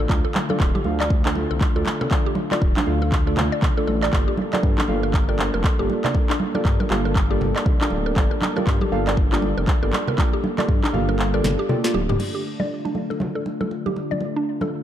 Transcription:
Already playing: D3 A3 D4 F4
0.09 D2 A3 D4 F4 A4 D5, kick, clap, muted conga
0.25 A4
0.35 clap, high conga
0.49 A3 D4 F4 A4 D5, muted conga, high conga
0.60 D1, kick, clap
0.75 G4, muted conga, high conga
0.84 D2 A3 D4 F4 A4 F5, high conga
1.00 D5, clap, muted conga
1.10 kick
1.25 A3 D4 F4 A4 D5, clap
1.35 muted conga
1.50 C2 A4
1.61 kick, clap, muted conga
1.76 D2 A3 D4 F4 A4 D5
1.86 clap, muted conga
2.01 A4, low conga
2.11 A3 D4 F4 A4 D5, kick, clap, muted conga
2.26 G4
2.35 high conga
2.51 A3 D4 F4 A4 D5, clap, muted conga, high conga
2.62 D1, kick
2.77 D4, clap, muted conga, high conga
2.87 D2 A3 D4 F4 A4 F5, high conga
3.02 A4, muted conga
3.12 kick, clap
3.27 A3 D4 F4 A4 D5
3.37 D2, clap, muted conga, low conga
3.52 D5
3.62 kick, clap, muted conga, low conga
3.77 A3 D4 F4 A4 D5
3.87 A1 A4, muted conga
4.03 D5, clap
4.12 G1 G3 A#3 D4 F4 G4 A4 D5, kick, clap, muted conga
4.28 G4
4.37 high conga
4.53 A#3 F4 G4 A4 D5, clap, muted conga, high conga
4.63 G2, kick
4.78 D4, clap, muted conga, high conga
4.88 G1 A#3 F4 G4 A4 F5, high conga
5.03 A#4, muted conga
5.14 kick, clap
5.28 A#3 F4 G4 A4 A#4 D5
5.39 clap, muted conga
5.54 F1 A#4
5.64 kick, clap, muted conga
5.79 G1 A#3 F4 G4 A4 D5
5.90 muted conga
6.04 D5, clap, low conga
6.14 A#3 F4 G4 A4 D5, kick, muted conga
6.30 D4, clap
6.40 high conga
6.55 A#3 F4 G4 A4 A#4 D5, muted conga, high conga
6.65 G2, kick, clap
6.80 A#4, muted conga, high conga
6.90 G1 A#3 F4 G4 A4 F5, clap, high conga
7.05 A#4, muted conga
7.16 kick, clap
7.30 A#3 F4 G4 A4 D5
7.41 G1, muted conga, low conga
7.56 D5, clap
7.66 kick, muted conga, low conga
7.81 A#3 D4 F4 G4 A4 D5, clap
7.90 D1, muted conga
8.06 A#4
8.16 G1 A#3 F4 G4 A4 D5, kick, clap, muted conga
8.31 A#4
8.42 clap, high conga
8.56 A#3 F4 G4 A4 A#4 D5, muted conga, high conga
8.67 G2, kick, clap
8.81 G4, muted conga, high conga
8.92 G1 A#3 F4 G4 A4 F5, high conga
9.07 D5, clap, muted conga
9.17 kick
9.32 A#3 D4 F4 G4 A4 D5, clap
9.42 muted conga
9.57 F1 A#4
9.68 kick, clap, muted conga
9.82 G1 A#3 F4 G4 A4 A#4 D5
9.93 clap, muted conga
10.08 A#4, low conga
10.18 A#3 F4 G4 A4 D5, kick, clap, muted conga
10.33 G4
10.44 high conga
10.58 A#3 F4 G4 A4 D5, clap, muted conga, high conga
10.68 G2, kick
10.83 D4, clap, muted conga, high conga
10.93 G1 A#3 F4 G4 A4 F5, high conga, low conga
11.09 A#4, muted conga
11.19 clap
11.34 A#3 F4 G4 A4 A#4 D5
11.44 G1, snare, muted conga, low conga
11.59 G4
11.69 A#3 F4 G4 A4 D5, mid tom, muted conga, low conga
11.84 A#3 F4 G4 A4 D5, snare
11.94 D1 G4, muted conga
12.09 G4, mid tom, low conga
12.19 D3 A3 D4 F4 A4 D5, crash, muted conga
12.35 G4
12.60 A3 D4 F4 A4 D5, muted conga, high conga
12.85 D4, muted conga
12.95 A3 D4 F4 A4 F5, high conga
13.10 A4, muted conga
13.20 high conga, low conga
13.35 A3 D4 F4 A4 D5
13.46 muted conga
13.61 A4, high conga
13.71 muted conga
13.86 A3 D4 F4 G4 A4 D5, high conga
13.96 muted conga
14.11 D5, high conga
14.21 A3 D4 F4 A4 D5, muted conga
14.36 D4
14.61 A3 D4 F4 A4 D5, muted conga, high conga

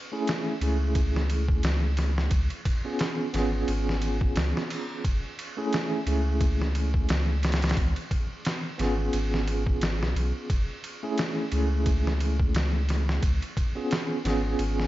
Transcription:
0.12 A3 C#4 E4 G#4
0.27 snare, ride
0.61 C#2 A3 C#4 E4 G#4, ride
0.95 kick, ride
1.16 snare
1.30 ride
1.48 kick
1.63 C#2, snare, ride
1.97 snare, ride
2.18 snare
2.31 C#2, kick, ride
2.50 ride
2.65 kick, ride
2.85 B3 C#4 F4 G#4
2.99 snare, ride
3.33 G#1 B3 C#4 F4 G#4, snare, ride
3.68 G#1, ride
3.89 snare
4.02 ride
4.21 kick
4.36 C#2, snare, ride
4.57 snare
4.70 ride
5.04 F#1, kick, ride
5.39 ride
5.57 A3 C#4 E4 G#4
5.73 snare, ride
6.06 C#2 A3 C#4 E4 G#4, ride
6.41 kick, ride
6.61 snare
6.75 ride
6.94 kick
7.09 C#2, snare, ride
7.43 snare, ride
7.52 snare, ride
7.62 snare, ride
7.69 snare, ride
7.77 C#2, kick, ride
7.96 ride
8.11 kick, ride
8.45 snare, ride
8.78 G#1 B3 C#4 F4 G#4, snare, ride
9.13 G#1, ride
9.34 snare
9.48 ride
9.67 kick
9.81 snare, ride
10.00 B1, snare
10.15 B1, ride
10.50 F#1, kick, ride
10.84 ride
11.03 A3 C#4 E4 G#4
11.18 snare, ride
11.51 C#2 A3 C#4 E4 G#4, ride
11.86 kick, ride
12.07 snare
12.20 ride
12.40 kick
12.54 C#2, snare, ride
12.89 snare, ride
13.09 snare
13.23 C#2, kick, ride
13.42 ride
13.57 kick, ride
13.75 B3 C#4 F4 G#4
13.91 snare, ride
14.24 G#1 B3 C#4 F4 G#4, snare, ride
14.59 G#1, ride
14.80 snare

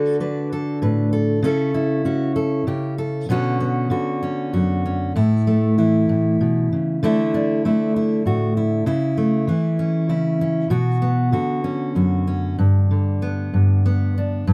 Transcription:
Already playing: D3 A3 F#4 A4
0.20 D4 B4
0.53 A4
0.82 A2 B4
1.13 A4
1.43 C#3 C#4 E4 A4
1.74 E4
2.05 C#4 F#4
2.36 A4
2.67 C#3 G4
2.98 A4
3.29 B2 D3 B3 C#4 F#4
3.60 B3
3.90 D3 F#4
4.23 C#4
4.53 F#2 F#4
4.86 C#4
5.16 A2 E4
5.47 A3
5.78 E3 E4
6.09 A2
6.41 B2
6.73 C#3
7.03 D3 A3 D4 E4
7.34 D4
7.65 A3 E4
7.96 E4
8.26 A2 F#4
8.57 E4
8.86 C#3 E4
9.17 A3
9.47 E3 E4
9.79 C#4
10.09 C#3 E4
10.41 C#4
10.70 B2 F#4
11.02 B3
11.32 D3 F#4
11.64 C#4
11.95 F#2 F#4
12.27 C#4
12.58 G2
12.91 D3
13.22 B3
13.54 G2
13.86 B3
14.18 D4
14.47 G2

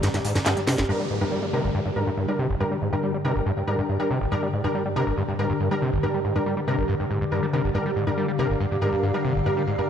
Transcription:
Already playing: G2 D3 G4 D5 A#5
0.03 G2, snare, closed hi-hat
0.14 G2, snare, closed hi-hat
0.25 G#2, snare, closed hi-hat, open hi-hat
0.35 G2, snare, closed hi-hat
0.46 G2, snare, clap, closed hi-hat
0.57 G3, snare, closed hi-hat
0.67 C3, snare, closed hi-hat, open hi-hat
0.78 G1, snare, closed hi-hat
0.89 G2 D3 G3 D4 G4 A#4, downlifter
1.00 G3 D5
1.10 G#2, closed hi-hat
1.21 G2 G3 D4 A#4 G5
1.31 G3, closed hi-hat
1.43 G3
1.53 C3 G3 D4 A#4, closed hi-hat
1.64 G1
1.75 G2, closed hi-hat
1.85 G2, snare
1.96 G#2 G3 D4 A#4, closed hi-hat
2.07 G2
2.17 G2, closed hi-hat
2.28 G3 D4 A#4
2.39 C3, open hi-hat
2.50 G1
2.60 G2 G3 D4 A#4, closed hi-hat
2.71 G3, closed hi-hat
2.81 G#2, closed hi-hat
2.93 G2 G3 D4 A#4, closed hi-hat
3.03 G3, closed hi-hat
3.14 G3
3.24 C3 G3 D4 A#4, closed hi-hat
3.35 G1
3.46 G2, closed hi-hat
3.56 G2, closed hi-hat
3.67 G#2 G3 D4 A#4, closed hi-hat
3.78 G2
3.89 G2, closed hi-hat
3.99 G3 D4 A#4, snare
4.10 C3, snare, closed hi-hat
4.21 G1, snare
4.31 G2 G3 D4 A#4, closed hi-hat
4.43 G3
4.53 G#2, closed hi-hat
4.64 G2 G3 D4 A#4
4.75 G3, closed hi-hat
4.86 G3
4.96 C3 G3 D4 A#4, closed hi-hat
5.07 G1
5.17 G2, closed hi-hat
5.28 G2, snare
5.39 G#2 G3 D4 A#4, closed hi-hat
5.50 G2
5.60 G2, closed hi-hat
5.71 G3 D4 A#4
5.82 C3, open hi-hat
5.93 G1
6.03 G2 G3 D4 A#4, closed hi-hat
6.14 G3, closed hi-hat
6.25 G#2, closed hi-hat
6.35 G2 G3 D4 A#4, closed hi-hat
6.46 G3, closed hi-hat
6.57 G3
6.67 C3 G3 D4 A#4, closed hi-hat
6.78 G1
6.88 G2, closed hi-hat
7.00 G2, closed hi-hat
7.11 G#2, closed hi-hat
7.21 G2
7.31 G2 G3 D4 A#4, closed hi-hat
7.41 G3 F5, snare
7.53 C3 G3 D4 A#4, snare, closed hi-hat
7.64 G1, snare
7.74 G2 G3 D4 A#4, closed hi-hat
7.86 G3
7.96 G#2, closed hi-hat
8.07 G2 G3 D4 A#4
8.18 G3, closed hi-hat
8.28 G3
8.38 C3 G3 D4 A#4, closed hi-hat
8.50 G1
8.60 G2, closed hi-hat
8.71 G2, snare
8.81 G#2 G3 D4 A#4, closed hi-hat
8.93 G2
9.03 G2, closed hi-hat
9.14 G3 D4 A#4
9.25 C3, open hi-hat
9.35 G1
9.46 G2 G3 D4 A#4, closed hi-hat
9.57 G3, closed hi-hat
9.67 G#2, closed hi-hat
9.78 G2 G3 D4 A#4, closed hi-hat

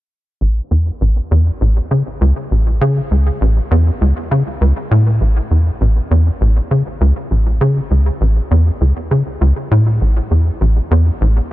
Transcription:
0.41 A1
0.71 E2
1.01 A1
1.31 E2
1.61 A1
1.91 C#3
2.21 C#2
2.51 A1
2.81 C#3
3.11 C#2
3.41 A1
3.71 E2
4.01 C#2
4.31 C#3
4.61 C#2
4.91 A2
5.21 A1
5.51 E2
5.81 A1
6.11 E2
6.41 A1
6.71 C#3
7.01 C#2
7.31 A1
7.61 C#3
7.91 C#2
8.21 A1
8.51 E2
8.81 C#2
9.11 C#3
9.41 C#2
9.71 A2
10.01 A1
10.31 E2
10.61 A1
10.91 E2
11.21 A1

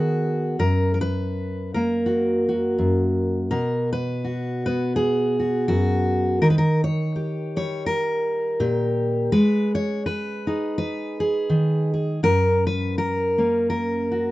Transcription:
Already playing: D#3 B3 F#4 G#4
0.59 F#2 A#4
0.94 A#4
1.01 B4
1.74 A#3 A#4
2.06 F#4
2.49 F#4
2.78 F#2
3.51 B2 A#4
3.93 B4
4.24 F#4
4.66 B3 B4
4.96 G#4
5.40 F#4
5.68 F#2 F#4
6.42 D#3 A#4
6.50 B4
6.58 A#4
6.84 C#5
7.16 G4
7.56 G3 C#5
7.86 A#4
8.60 A#2 G4
9.32 G#3 B4
9.75 C#5
10.06 B4
10.47 D#4 G#4
10.78 B4
11.20 G#4
11.49 D#3
11.94 G#4
12.23 F#2 A#4
12.67 B4
12.98 A#4
13.38 A#3 C#4
13.70 A#4
14.12 F#4

